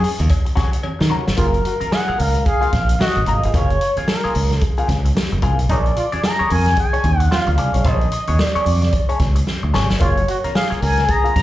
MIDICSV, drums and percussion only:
0, 0, Header, 1, 2, 480
1, 0, Start_track
1, 0, Tempo, 539568
1, 1227, Time_signature, 4, 2, 24, 8
1, 10164, End_track
2, 0, Start_track
2, 0, Title_t, "Drums"
2, 34, Note_on_c, 9, 46, 86
2, 122, Note_off_c, 9, 46, 0
2, 168, Note_on_c, 9, 42, 40
2, 175, Note_on_c, 9, 64, 71
2, 257, Note_off_c, 9, 42, 0
2, 261, Note_on_c, 9, 42, 77
2, 264, Note_off_c, 9, 64, 0
2, 267, Note_on_c, 9, 36, 83
2, 268, Note_on_c, 9, 56, 90
2, 350, Note_off_c, 9, 42, 0
2, 356, Note_off_c, 9, 36, 0
2, 357, Note_off_c, 9, 56, 0
2, 411, Note_on_c, 9, 42, 34
2, 412, Note_on_c, 9, 62, 36
2, 500, Note_off_c, 9, 42, 0
2, 501, Note_off_c, 9, 62, 0
2, 504, Note_on_c, 9, 42, 70
2, 506, Note_on_c, 9, 36, 101
2, 507, Note_on_c, 9, 63, 79
2, 515, Note_on_c, 9, 38, 39
2, 516, Note_on_c, 9, 56, 71
2, 593, Note_off_c, 9, 42, 0
2, 595, Note_off_c, 9, 36, 0
2, 596, Note_off_c, 9, 63, 0
2, 604, Note_off_c, 9, 38, 0
2, 605, Note_off_c, 9, 56, 0
2, 650, Note_on_c, 9, 42, 57
2, 739, Note_off_c, 9, 42, 0
2, 742, Note_on_c, 9, 56, 94
2, 747, Note_on_c, 9, 63, 82
2, 831, Note_off_c, 9, 56, 0
2, 836, Note_off_c, 9, 63, 0
2, 894, Note_on_c, 9, 38, 61
2, 983, Note_off_c, 9, 38, 0
2, 985, Note_on_c, 9, 64, 78
2, 1074, Note_off_c, 9, 64, 0
2, 1135, Note_on_c, 9, 38, 98
2, 1222, Note_on_c, 9, 42, 97
2, 1222, Note_on_c, 9, 64, 87
2, 1224, Note_off_c, 9, 38, 0
2, 1226, Note_on_c, 9, 36, 101
2, 1311, Note_off_c, 9, 42, 0
2, 1311, Note_off_c, 9, 64, 0
2, 1315, Note_off_c, 9, 36, 0
2, 1369, Note_on_c, 9, 42, 33
2, 1458, Note_off_c, 9, 42, 0
2, 1468, Note_on_c, 9, 42, 71
2, 1557, Note_off_c, 9, 42, 0
2, 1606, Note_on_c, 9, 63, 75
2, 1608, Note_on_c, 9, 42, 40
2, 1695, Note_off_c, 9, 63, 0
2, 1697, Note_off_c, 9, 42, 0
2, 1710, Note_on_c, 9, 38, 102
2, 1799, Note_off_c, 9, 38, 0
2, 1851, Note_on_c, 9, 62, 38
2, 1940, Note_off_c, 9, 62, 0
2, 1951, Note_on_c, 9, 46, 69
2, 2040, Note_off_c, 9, 46, 0
2, 2089, Note_on_c, 9, 42, 45
2, 2089, Note_on_c, 9, 64, 76
2, 2178, Note_off_c, 9, 42, 0
2, 2178, Note_off_c, 9, 64, 0
2, 2183, Note_on_c, 9, 62, 42
2, 2187, Note_on_c, 9, 42, 68
2, 2190, Note_on_c, 9, 36, 86
2, 2272, Note_off_c, 9, 62, 0
2, 2276, Note_off_c, 9, 42, 0
2, 2279, Note_off_c, 9, 36, 0
2, 2327, Note_on_c, 9, 62, 36
2, 2335, Note_on_c, 9, 42, 32
2, 2416, Note_off_c, 9, 62, 0
2, 2424, Note_off_c, 9, 42, 0
2, 2425, Note_on_c, 9, 42, 72
2, 2425, Note_on_c, 9, 63, 76
2, 2428, Note_on_c, 9, 36, 91
2, 2435, Note_on_c, 9, 38, 36
2, 2514, Note_off_c, 9, 42, 0
2, 2514, Note_off_c, 9, 63, 0
2, 2517, Note_off_c, 9, 36, 0
2, 2524, Note_off_c, 9, 38, 0
2, 2571, Note_on_c, 9, 42, 57
2, 2659, Note_on_c, 9, 63, 80
2, 2660, Note_off_c, 9, 42, 0
2, 2675, Note_on_c, 9, 38, 110
2, 2748, Note_off_c, 9, 63, 0
2, 2764, Note_off_c, 9, 38, 0
2, 2807, Note_on_c, 9, 42, 34
2, 2810, Note_on_c, 9, 62, 32
2, 2896, Note_off_c, 9, 42, 0
2, 2899, Note_off_c, 9, 62, 0
2, 2902, Note_on_c, 9, 42, 71
2, 2902, Note_on_c, 9, 64, 79
2, 2991, Note_off_c, 9, 42, 0
2, 2991, Note_off_c, 9, 64, 0
2, 3054, Note_on_c, 9, 42, 55
2, 3143, Note_off_c, 9, 42, 0
2, 3147, Note_on_c, 9, 42, 97
2, 3148, Note_on_c, 9, 62, 38
2, 3148, Note_on_c, 9, 64, 88
2, 3149, Note_on_c, 9, 36, 102
2, 3236, Note_off_c, 9, 42, 0
2, 3237, Note_off_c, 9, 62, 0
2, 3237, Note_off_c, 9, 64, 0
2, 3238, Note_off_c, 9, 36, 0
2, 3292, Note_on_c, 9, 62, 37
2, 3294, Note_on_c, 9, 42, 34
2, 3381, Note_off_c, 9, 62, 0
2, 3383, Note_off_c, 9, 42, 0
2, 3389, Note_on_c, 9, 42, 66
2, 3478, Note_off_c, 9, 42, 0
2, 3528, Note_on_c, 9, 63, 70
2, 3529, Note_on_c, 9, 42, 42
2, 3617, Note_off_c, 9, 63, 0
2, 3618, Note_off_c, 9, 42, 0
2, 3628, Note_on_c, 9, 38, 121
2, 3717, Note_off_c, 9, 38, 0
2, 3766, Note_on_c, 9, 62, 39
2, 3777, Note_on_c, 9, 42, 33
2, 3855, Note_off_c, 9, 62, 0
2, 3866, Note_off_c, 9, 42, 0
2, 3867, Note_on_c, 9, 46, 80
2, 3956, Note_off_c, 9, 46, 0
2, 4006, Note_on_c, 9, 64, 74
2, 4008, Note_on_c, 9, 42, 42
2, 4014, Note_on_c, 9, 38, 29
2, 4095, Note_off_c, 9, 64, 0
2, 4097, Note_off_c, 9, 42, 0
2, 4103, Note_off_c, 9, 38, 0
2, 4104, Note_on_c, 9, 42, 71
2, 4109, Note_on_c, 9, 36, 92
2, 4193, Note_off_c, 9, 42, 0
2, 4198, Note_off_c, 9, 36, 0
2, 4245, Note_on_c, 9, 62, 35
2, 4253, Note_on_c, 9, 42, 34
2, 4334, Note_off_c, 9, 62, 0
2, 4342, Note_off_c, 9, 42, 0
2, 4342, Note_on_c, 9, 63, 79
2, 4348, Note_on_c, 9, 36, 93
2, 4349, Note_on_c, 9, 42, 74
2, 4359, Note_on_c, 9, 38, 38
2, 4431, Note_off_c, 9, 63, 0
2, 4437, Note_off_c, 9, 36, 0
2, 4438, Note_off_c, 9, 42, 0
2, 4448, Note_off_c, 9, 38, 0
2, 4496, Note_on_c, 9, 42, 59
2, 4582, Note_on_c, 9, 62, 36
2, 4582, Note_on_c, 9, 63, 75
2, 4585, Note_off_c, 9, 42, 0
2, 4596, Note_on_c, 9, 38, 112
2, 4671, Note_off_c, 9, 62, 0
2, 4671, Note_off_c, 9, 63, 0
2, 4685, Note_off_c, 9, 38, 0
2, 4728, Note_on_c, 9, 42, 37
2, 4729, Note_on_c, 9, 62, 33
2, 4817, Note_off_c, 9, 42, 0
2, 4818, Note_off_c, 9, 62, 0
2, 4822, Note_on_c, 9, 42, 77
2, 4822, Note_on_c, 9, 64, 76
2, 4827, Note_on_c, 9, 36, 92
2, 4911, Note_off_c, 9, 42, 0
2, 4911, Note_off_c, 9, 64, 0
2, 4915, Note_off_c, 9, 36, 0
2, 4972, Note_on_c, 9, 42, 57
2, 5061, Note_off_c, 9, 42, 0
2, 5064, Note_on_c, 9, 42, 100
2, 5066, Note_on_c, 9, 36, 105
2, 5069, Note_on_c, 9, 64, 86
2, 5153, Note_off_c, 9, 42, 0
2, 5155, Note_off_c, 9, 36, 0
2, 5158, Note_off_c, 9, 64, 0
2, 5211, Note_on_c, 9, 42, 33
2, 5300, Note_off_c, 9, 42, 0
2, 5306, Note_on_c, 9, 42, 64
2, 5395, Note_off_c, 9, 42, 0
2, 5446, Note_on_c, 9, 42, 39
2, 5455, Note_on_c, 9, 63, 70
2, 5535, Note_off_c, 9, 42, 0
2, 5544, Note_off_c, 9, 63, 0
2, 5546, Note_on_c, 9, 38, 108
2, 5635, Note_off_c, 9, 38, 0
2, 5691, Note_on_c, 9, 62, 34
2, 5780, Note_off_c, 9, 62, 0
2, 5783, Note_on_c, 9, 46, 75
2, 5872, Note_off_c, 9, 46, 0
2, 5923, Note_on_c, 9, 42, 45
2, 5929, Note_on_c, 9, 38, 30
2, 5933, Note_on_c, 9, 64, 74
2, 6012, Note_off_c, 9, 42, 0
2, 6018, Note_off_c, 9, 38, 0
2, 6019, Note_on_c, 9, 42, 74
2, 6022, Note_off_c, 9, 64, 0
2, 6026, Note_on_c, 9, 36, 83
2, 6028, Note_on_c, 9, 62, 39
2, 6108, Note_off_c, 9, 42, 0
2, 6115, Note_off_c, 9, 36, 0
2, 6117, Note_off_c, 9, 62, 0
2, 6170, Note_on_c, 9, 42, 33
2, 6172, Note_on_c, 9, 62, 34
2, 6259, Note_off_c, 9, 42, 0
2, 6260, Note_on_c, 9, 42, 63
2, 6261, Note_off_c, 9, 62, 0
2, 6264, Note_on_c, 9, 36, 89
2, 6271, Note_on_c, 9, 63, 82
2, 6349, Note_off_c, 9, 42, 0
2, 6353, Note_off_c, 9, 36, 0
2, 6360, Note_off_c, 9, 63, 0
2, 6406, Note_on_c, 9, 42, 57
2, 6495, Note_off_c, 9, 42, 0
2, 6507, Note_on_c, 9, 62, 35
2, 6507, Note_on_c, 9, 63, 81
2, 6512, Note_on_c, 9, 38, 102
2, 6596, Note_off_c, 9, 62, 0
2, 6596, Note_off_c, 9, 63, 0
2, 6601, Note_off_c, 9, 38, 0
2, 6642, Note_on_c, 9, 42, 32
2, 6651, Note_on_c, 9, 62, 36
2, 6731, Note_off_c, 9, 42, 0
2, 6740, Note_off_c, 9, 62, 0
2, 6740, Note_on_c, 9, 42, 72
2, 6742, Note_on_c, 9, 64, 80
2, 6829, Note_off_c, 9, 42, 0
2, 6831, Note_off_c, 9, 64, 0
2, 6886, Note_on_c, 9, 42, 61
2, 6975, Note_off_c, 9, 42, 0
2, 6978, Note_on_c, 9, 42, 92
2, 6983, Note_on_c, 9, 36, 118
2, 6983, Note_on_c, 9, 62, 38
2, 6983, Note_on_c, 9, 64, 86
2, 7067, Note_off_c, 9, 42, 0
2, 7072, Note_off_c, 9, 36, 0
2, 7072, Note_off_c, 9, 62, 0
2, 7072, Note_off_c, 9, 64, 0
2, 7128, Note_on_c, 9, 42, 31
2, 7131, Note_on_c, 9, 62, 36
2, 7217, Note_off_c, 9, 42, 0
2, 7220, Note_off_c, 9, 62, 0
2, 7220, Note_on_c, 9, 42, 76
2, 7309, Note_off_c, 9, 42, 0
2, 7360, Note_on_c, 9, 42, 43
2, 7363, Note_on_c, 9, 63, 73
2, 7449, Note_off_c, 9, 42, 0
2, 7452, Note_off_c, 9, 63, 0
2, 7459, Note_on_c, 9, 62, 36
2, 7465, Note_on_c, 9, 38, 109
2, 7548, Note_off_c, 9, 62, 0
2, 7554, Note_off_c, 9, 38, 0
2, 7613, Note_on_c, 9, 42, 33
2, 7699, Note_on_c, 9, 63, 60
2, 7702, Note_off_c, 9, 42, 0
2, 7703, Note_on_c, 9, 46, 68
2, 7788, Note_off_c, 9, 63, 0
2, 7792, Note_off_c, 9, 46, 0
2, 7845, Note_on_c, 9, 42, 44
2, 7848, Note_on_c, 9, 64, 67
2, 7852, Note_on_c, 9, 38, 31
2, 7934, Note_off_c, 9, 42, 0
2, 7937, Note_off_c, 9, 64, 0
2, 7940, Note_on_c, 9, 42, 73
2, 7940, Note_on_c, 9, 62, 37
2, 7941, Note_off_c, 9, 38, 0
2, 7945, Note_on_c, 9, 36, 79
2, 8029, Note_off_c, 9, 42, 0
2, 8029, Note_off_c, 9, 62, 0
2, 8034, Note_off_c, 9, 36, 0
2, 8089, Note_on_c, 9, 42, 30
2, 8178, Note_off_c, 9, 42, 0
2, 8180, Note_on_c, 9, 42, 74
2, 8184, Note_on_c, 9, 36, 94
2, 8185, Note_on_c, 9, 63, 77
2, 8190, Note_on_c, 9, 38, 37
2, 8268, Note_off_c, 9, 42, 0
2, 8272, Note_off_c, 9, 36, 0
2, 8274, Note_off_c, 9, 63, 0
2, 8279, Note_off_c, 9, 38, 0
2, 8324, Note_on_c, 9, 42, 62
2, 8413, Note_off_c, 9, 42, 0
2, 8422, Note_on_c, 9, 62, 35
2, 8422, Note_on_c, 9, 63, 82
2, 8426, Note_on_c, 9, 38, 52
2, 8511, Note_off_c, 9, 62, 0
2, 8511, Note_off_c, 9, 63, 0
2, 8515, Note_off_c, 9, 38, 0
2, 8569, Note_on_c, 9, 62, 32
2, 8658, Note_off_c, 9, 62, 0
2, 8664, Note_on_c, 9, 64, 74
2, 8666, Note_on_c, 9, 38, 91
2, 8753, Note_off_c, 9, 64, 0
2, 8755, Note_off_c, 9, 38, 0
2, 8809, Note_on_c, 9, 38, 86
2, 8898, Note_off_c, 9, 38, 0
2, 8900, Note_on_c, 9, 42, 89
2, 8904, Note_on_c, 9, 36, 106
2, 8905, Note_on_c, 9, 62, 35
2, 8905, Note_on_c, 9, 64, 81
2, 8989, Note_off_c, 9, 42, 0
2, 8993, Note_off_c, 9, 36, 0
2, 8994, Note_off_c, 9, 62, 0
2, 8994, Note_off_c, 9, 64, 0
2, 9050, Note_on_c, 9, 42, 34
2, 9055, Note_on_c, 9, 62, 36
2, 9139, Note_off_c, 9, 42, 0
2, 9144, Note_off_c, 9, 62, 0
2, 9147, Note_on_c, 9, 42, 71
2, 9236, Note_off_c, 9, 42, 0
2, 9289, Note_on_c, 9, 42, 42
2, 9289, Note_on_c, 9, 63, 70
2, 9378, Note_off_c, 9, 42, 0
2, 9378, Note_off_c, 9, 63, 0
2, 9389, Note_on_c, 9, 38, 105
2, 9478, Note_off_c, 9, 38, 0
2, 9525, Note_on_c, 9, 62, 36
2, 9538, Note_on_c, 9, 42, 31
2, 9614, Note_off_c, 9, 62, 0
2, 9627, Note_off_c, 9, 42, 0
2, 9628, Note_on_c, 9, 46, 73
2, 9717, Note_off_c, 9, 46, 0
2, 9765, Note_on_c, 9, 42, 44
2, 9771, Note_on_c, 9, 38, 32
2, 9771, Note_on_c, 9, 64, 67
2, 9853, Note_off_c, 9, 42, 0
2, 9860, Note_off_c, 9, 38, 0
2, 9860, Note_off_c, 9, 64, 0
2, 9861, Note_on_c, 9, 42, 74
2, 9865, Note_on_c, 9, 62, 39
2, 9866, Note_on_c, 9, 36, 92
2, 9949, Note_off_c, 9, 42, 0
2, 9953, Note_off_c, 9, 62, 0
2, 9955, Note_off_c, 9, 36, 0
2, 10010, Note_on_c, 9, 62, 35
2, 10013, Note_on_c, 9, 42, 30
2, 10099, Note_off_c, 9, 62, 0
2, 10102, Note_off_c, 9, 42, 0
2, 10104, Note_on_c, 9, 42, 69
2, 10105, Note_on_c, 9, 36, 87
2, 10109, Note_on_c, 9, 63, 77
2, 10114, Note_on_c, 9, 38, 36
2, 10164, Note_off_c, 9, 36, 0
2, 10164, Note_off_c, 9, 38, 0
2, 10164, Note_off_c, 9, 42, 0
2, 10164, Note_off_c, 9, 63, 0
2, 10164, End_track
0, 0, End_of_file